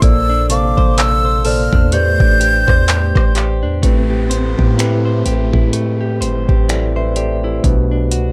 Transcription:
Already playing: clean electric guitar F3 E4 A4 C5
0.02 808-style bass A#1, tine electric piano A#2 A#3 A4 C5 D5, clean electric guitar A#3, flute E6, kick, closed hi-hat
0.29 clean electric guitar D4
0.49 808-style bass A1, tine electric piano C3 A#3 A4 C5 F5, clean electric guitar A4, flute D6, closed hi-hat
0.77 808-style bass A1, clean electric guitar C5, kick
0.97 clean electric guitar A4, flute E6, clap, closed hi-hat
1.25 clean electric guitar C5
1.44 tine electric piano A#2 A#3 A4 C5 D5, clean electric guitar A4, flute F6, open hi-hat
1.73 808-style bass E2, clean electric guitar D4, kick
1.92 tine electric piano A2 A3 G4 B4 C5 D5, clean electric guitar A3, flute G6, closed hi-hat
2.20 808-style bass A1, clean electric guitar D4, kick
2.40 clean electric guitar G4, closed hi-hat
2.67 808-style bass E2, clean electric guitar C5, kick, cross-stick
2.88 clean electric guitar G4, clap, closed hi-hat
3.15 808-style bass A1, clean electric guitar C5, kick, cross-stick
3.35 clean electric guitar G4, clap, closed hi-hat
3.63 808-style bass E2, clean electric guitar D4
3.82 808-style bass A1, tine electric piano A2 A3 C4 G4 B4, clean electric guitar A3, kick, closed hi-hat, downlifter
4.10 clean electric guitar G4
4.30 clean electric guitar C5, closed hi-hat
4.58 808-style bass A2, clean electric guitar G4, kick
4.77 tine electric piano A2 A3 C4 G4 B4, clean electric guitar E4, finger snap, closed hi-hat
5.05 clean electric guitar C5
5.26 808-style bass A1, clean electric guitar G4, closed hi-hat
5.53 808-style bass A2, clean electric guitar E4, kick
5.73 clean electric guitar A3, closed hi-hat
6.01 clean electric guitar G4
6.21 808-style bass G1, clean electric guitar C5, closed hi-hat
6.49 808-style bass A1, clean electric guitar G4, tine electric piano G4 C5, kick
6.69 clean electric guitar E4, tine electric piano A4 D5, finger snap, closed hi-hat
6.96 tine electric piano B4 E5, clean electric guitar C5
7.16 clean electric guitar G4, tine electric piano A4 D5, closed hi-hat
7.44 clean electric guitar E4, tine electric piano G4 C5
7.63 808-style bass B1, tine electric piano B2 A3 D4 F#4 B4, clean electric guitar B2, kick, closed hi-hat
7.91 clean electric guitar D4
8.11 808-style bass C2, clean electric guitar F#4, closed hi-hat

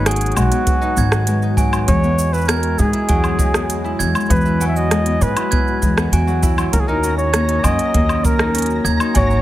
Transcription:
Already playing: upright bass G#1, harp G#3 B3 C#4 D#4, ambient pad G#3 F#4 B4
0.06 harp F#3, flugelhorn G#4, glockenspiel G#5, cross-stick, closed hi-hat, cabasa
0.11 closed hi-hat
0.16 closed hi-hat
0.21 closed hi-hat, cabasa
0.26 closed hi-hat
0.32 closed hi-hat
0.36 upright bass B1, harp G#3, flugelhorn F#4, cabasa, low woodblock
0.51 harp B3, closed hi-hat, cabasa
0.67 kick, closed hi-hat, cabasa
0.81 harp D#4, cabasa
0.97 upright bass G#1, harp B3, glockenspiel G#6, kick, cabasa
1.12 cross-stick, cabasa
1.27 harp G#3, closed hi-hat, cabasa
1.42 harp D#4, cabasa
1.57 harp F#3, glockenspiel G#5, kick, cabasa
1.73 cabasa, low woodblock
1.88 upright bass E2, harp G#3, ambient pad E4 F#4, flugelhorn C#5, kick, closed hi-hat, cabasa
2.04 harp B3, cabasa
2.19 cabasa
2.33 harp E4, flugelhorn B4, cabasa
2.38 cabasa
2.41 cabasa
2.45 harp B3, flugelhorn A#4, glockenspiel G#6, cross-stick, closed hi-hat, cabasa
2.49 cabasa
2.60 closed hi-hat, cabasa
2.63 cabasa
2.78 upright bass G#2, harp G#3, flugelhorn G#4, kick, cabasa
2.93 harp E4, closed hi-hat
3.09 upright bass E2, harp F#3, glockenspiel G#5, kick, closed hi-hat, cabasa
3.24 cabasa, low woodblock
3.39 harp G#3, kick, cabasa
3.54 harp B3, cross-stick, cabasa
3.70 closed hi-hat, cabasa
3.84 harp E4, cabasa
3.99 upright bass E2, harp B3, glockenspiel G#6, cabasa
4.15 cabasa, low woodblock
4.26 cabasa
4.30 upright bass E2, harp G#3, flugelhorn B4, kick, closed hi-hat, cabasa
4.36 cabasa
4.41 cabasa
4.45 harp E4, cabasa
4.60 harp F#3, glockenspiel G#5, cabasa
4.68 flugelhorn E5
4.76 flugelhorn D#5, cabasa
4.91 harp G#3, cross-stick, closed hi-hat, cabasa
5.06 harp B3, closed hi-hat, cabasa
5.21 upright bass G#2, flugelhorn B4, cabasa
5.36 harp E4, closed hi-hat, cabasa, low woodblock
5.51 harp B3, glockenspiel G#6, kick, closed hi-hat, cabasa
5.67 cabasa
5.82 upright bass E2, harp G#3, kick, cabasa
5.98 harp B3, cross-stick, cabasa
6.12 upright bass E2, harp F#4, glockenspiel G#5, closed hi-hat, cabasa
6.27 harp F#3, cabasa
6.42 harp E4, kick, cabasa
6.57 harp F#3, cabasa, low woodblock
6.72 upright bass D#2, ambient pad D#3 C#4, flugelhorn A#4, synth texture A#5 A#6, kick, closed hi-hat, cabasa
6.80 flugelhorn G#4
6.88 harp D#4, flugelhorn A#4, cabasa
7.04 harp C#4, cabasa
7.18 flugelhorn C#5, cabasa
7.33 harp A#3, glockenspiel G#6, cross-stick, closed hi-hat, cabasa
7.49 harp D#4, closed hi-hat, cabasa
7.64 upright bass F#2, harp F#3, flugelhorn D#5, glockenspiel G#5, kick, cabasa, low woodblock
7.79 closed hi-hat, cabasa
7.94 upright bass D#2, harp A#3, kick, closed hi-hat, cabasa
8.09 harp C#4, cabasa, low woodblock
8.25 flugelhorn A#4, kick, cabasa
8.39 harp D#4, cross-stick, cabasa
8.55 harp C#4, closed hi-hat, cabasa
8.58 closed hi-hat
8.62 closed hi-hat
8.66 closed hi-hat
8.70 cabasa
8.84 upright bass D#2, harp A#3, glockenspiel G#6, cabasa
9.00 harp D#4, cabasa, low woodblock
9.14 upright bass G#1, harp F#3, ambient pad G#3 B4, flugelhorn C#5, glockenspiel G#5, kick, closed hi-hat, cabasa
9.30 cabasa

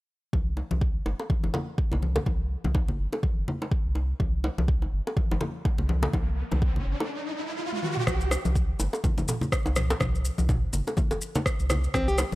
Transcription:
0.33 analog synth bass C2, kick, high conga
0.57 low bongo
0.71 analog synth bass C2, high conga
0.81 kick
1.05 analog synth bass G1, low bongo
1.20 high bongo
1.30 kick, high conga
1.43 analog synth bass G1, low bongo, high conga
1.54 high bongo, low conga
1.78 kick
1.92 analog synth bass C2, low bongo, low conga
2.02 high conga
2.16 high bongo, low conga
2.26 analog synth bass C2, kick, low bongo, high conga
2.64 analog synth bass C2, high conga, low conga
2.75 kick, low bongo
2.88 low conga
2.99 analog synth bass G1
3.13 high bongo, low bongo
3.23 kick, high conga
3.37 analog synth bass G1
3.48 low conga
3.62 low bongo
3.71 kick
3.85 analog synth bass C2
3.95 low bongo
4.20 analog synth bass C2, kick, riser, high conga
4.44 low bongo
4.58 analog synth bass C2, high conga
4.68 kick
4.82 low bongo
4.92 analog synth bass G1
5.07 high bongo
5.17 kick, high conga
5.31 analog synth bass G1, low bongo, high conga
5.41 high bongo, low conga
5.65 kick, low bongo
5.78 analog synth bass C2, low conga
5.89 high conga
6.03 high bongo, low conga
6.13 analog synth bass C2, kick, low bongo, high conga
6.52 analog synth bass C2, low bongo, high conga, low conga
6.62 kick
6.76 low conga
6.86 analog synth bass G1
7.00 high bongo, low bongo
7.73 high tom
7.83 mid tom
7.97 mid tom
8.07 analog synth bass C2, kick, cross-stick, high conga, maracas
8.21 maracas
8.31 cross-stick, low bongo, maracas
8.45 analog synth bass C2, high conga, maracas
8.55 kick, maracas
8.79 analog synth bass G1, low bongo, maracas
8.93 high bongo, maracas
9.04 kick, high conga, low conga, maracas
9.18 analog synth bass G1, low bongo, high conga, low conga, maracas
9.28 mid tom, high bongo, maracas
9.41 low conga, maracas
9.52 kick, cross-stick, maracas
9.66 analog synth bass C2, low bongo, maracas
9.76 cross-stick, mid tom, high conga, maracas
9.90 high bongo, maracas
10.00 analog synth bass C2, kick, cross-stick, mid tom, low bongo, high conga, maracas
10.15 maracas
10.25 maracas
10.38 analog synth bass C2, high conga, maracas
10.49 kick, mid tom, low bongo, maracas
10.73 analog synth bass G1, low conga, maracas
10.87 high bongo, low bongo, maracas
10.97 kick, high conga, low conga, maracas
11.11 analog synth bass G1, high bongo, maracas
11.21 maracas
11.35 low bongo, low conga, maracas
11.46 kick, cross-stick, maracas
11.60 analog synth bass C2, maracas
11.70 cross-stick, low bongo, low conga, maracas
11.84 maracas
11.94 analog synth bass C2, nylon-string guitar C4, kick, cross-stick, high conga, maracas
12.08 nylon-string guitar G4, maracas
12.18 cross-stick, low bongo, maracas

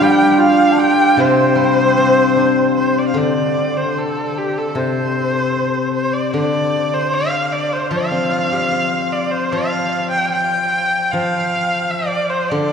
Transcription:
Already playing: guzheng F3, hammered dulcimer C4 D4 F4 A4
0.01 guzheng G3, hammered dulcimer G4, xiao G5, erhu G5
0.32 erhu G5, xiao G5
0.38 hammered dulcimer F4, xiao F5, erhu F5
0.72 xiao A5
0.77 hammered dulcimer G4, xiao G5, erhu G5
1.17 guzheng C3, hammered dulcimer C4, xiao C5, erhu C5
1.55 guzheng G3
1.98 guzheng C4
2.36 guzheng D4
2.76 erhu C5
2.98 erhu D5
3.08 erhu F5
3.14 guzheng D3, erhu D5
3.77 erhu C5
3.98 erhu A4
4.37 erhu G4
4.57 erhu A4
4.75 guzheng C3, erhu C5
5.94 erhu C5
6.13 erhu D5
6.33 guzheng D3, erhu D5
6.93 erhu C5
7.13 erhu F5
7.52 erhu D5
7.73 erhu C5
7.91 guzheng F3, erhu F5
8.11 guzheng C4
8.30 guzheng F4
8.52 guzheng G4
8.72 guzheng C5
9.12 erhu D5
9.30 erhu C5
9.52 guzheng F3, erhu F5
10.10 erhu G5
10.31 erhu G5
11.11 guzheng F3, erhu F5
11.91 erhu D5
12.30 erhu C5
12.49 guzheng D3, erhu D5

